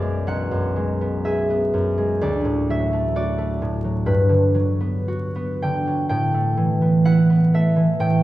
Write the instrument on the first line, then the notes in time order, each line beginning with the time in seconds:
harp
Already playing: B1 F#2 B3 G#4 D5 E5 F#5
0.02 G#3
0.27 B1 F#5
0.51 F#2
0.76 G#3
1.01 B3
1.25 G#4 E5
1.50 B3
1.74 F#2
1.98 G#3
2.21 D2 D5
2.45 A2
2.70 F#3 E5
2.93 A3
3.16 F#4 D5
3.38 A3
3.62 A2
3.84 F#3
4.06 G2 B4
4.29 D3
4.55 F#3
4.80 B3
5.08 F#4
5.36 B3
5.62 D3 G5
5.87 F#3
6.09 A2 G5
6.34 A3
6.57 E3
6.82 B3
7.05 E4 F#5
7.30 B3
7.54 A3 E5
7.76 E3
8.00 A2 G5